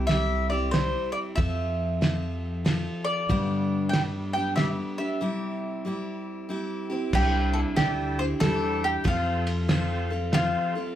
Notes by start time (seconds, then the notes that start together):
Already playing: C2 C4 G4
0.07 G3 C4 E5, snare, ride
0.11 E4 G4
0.50 C4 E4 G4 D5
0.71 G3 C4 E4 C5, snare, ride
0.76 G4
1.12 D5
1.35 F2 F3 C4 F4 A4 E5, kick, ride
2.01 F3 C4 F4 A4, snare, ride
2.65 F3 C4 F4 A4, snare, ride
3.04 D5
3.29 G2 D3 G3 B3 D4 G4, kick, ride
3.89 G3 G5
3.93 B3 D4 G4, snare, ride
4.33 G3 B3 D4 G4 G5
4.56 G3 B3 D4 G4 E5, snare, ride
4.98 G3 B3 D4 G4 E5
5.21 C3 G3 C4 E4 G4
5.85 G3 C4 E4 G4
6.49 G3 C4 E4 G4
6.90 C4 E4 G4
7.13 C2 C3 G3 D4 E4 G4 C5, kick, crash
7.53 A4
7.76 D2 G3 D4 E4 G4 A4, snare, ride
8.19 D4 E4 G4 C5
8.40 E2 G3 D4 E4 G4 A4 C5, snare, ride
8.44 G4
8.84 G4
9.04 F2 F3 C4 F4 A4 C5, kick, ride
9.47 ride
9.68 F3 C4 F4 A4 C5, snare, ride
10.10 C4 F4 A4
10.32 F3 C4 F4 A4 C5, snare, ride
10.75 C4 F4 A4